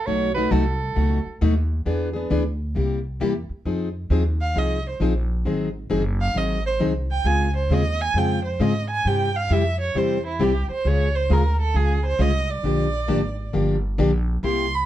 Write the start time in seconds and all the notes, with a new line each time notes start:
0.06 B1 B2 F#3 A3 D#4 F#4 C#5
0.34 A3 D#4 F#4 B4
0.51 C2 B2 F#3 A3 D#4 F#4 A4
0.95 C#2 B2 F#3 A3 D#4 F#4
1.26 muted upright bass stroke
1.41 D#2 B2 F#3 A3 D#4 F#4
1.86 E2 E3 B3 D4 G#4
2.13 B3 D4 G#4
2.30 D2 E3 B3 D4 G#4
2.75 C2 C3 G3 A#3 E4 G4
3.20 E2 C3 G3 A#3 E4 G4
3.49 muted upright bass stroke
3.65 F2 F3 C4 D#4 G#4
4.10 D#2 F3 C4 D#4 G#4
4.41 F5
4.55 C2 F3 C4 D#4 G#4 D#5
4.88 C5
5.00 A#1 F3 C4 D#4 G#4
5.45 G#1 D#3 F#3 C4 D#4 G#4
5.90 F#1 D#3 F#3 C4 D#4 G#4
6.21 F5
6.34 G#1 D#3 F#3 C4 D#4 G#4 D#5
6.66 C5
6.79 C2 D#3 F#3 C4 D#4 G#4
7.11 G5
7.24 C#2 C#3 G#3 C4 F4 G#4 G#5
7.57 C5
7.70 D#2 C#3 G#3 C4 F4 G#4 D#5
8.01 G#5
8.14 F2 C#3 G#3 C4 F4 G#4 G5
8.45 C5
8.60 G#2 C#3 G#3 C4 F4 G#4 D#5
8.90 G#5
9.05 G2 C3 G3 C4 E4 G4 G5
9.36 F5
9.50 F2 C3 G3 C4 E4 G4 E5
9.81 C#5
9.95 E2 C3 G3 C4 E4 G4 C5
10.27 E4
10.39 C2 C3 G3 C4 E4 G4
10.69 C5, muted upright bass stroke
10.85 C#2 C#3 G#3 C#4 F4 G#4 C#5
11.15 C5
11.30 D2 C#3 G#3 C#4 F4 G#4 A#4
11.61 A4
11.74 C#2 C#3 G#3 C#4 F4 G#4
12.06 C5
12.19 C2 C#3 G#3 C#4 F4 G#4 D#5
12.51 D5
12.63 A#1 D3 F3 A#3 D4 G4
13.08 G#1 D3 F3 A#3 D4 G4
13.53 G1 D3 F3 A#3 D4 G4
13.98 A#1 D3 F3 A#3 D4 G4
14.43 C2 C3 G3 A#3 E4 G4 C6
14.75 B5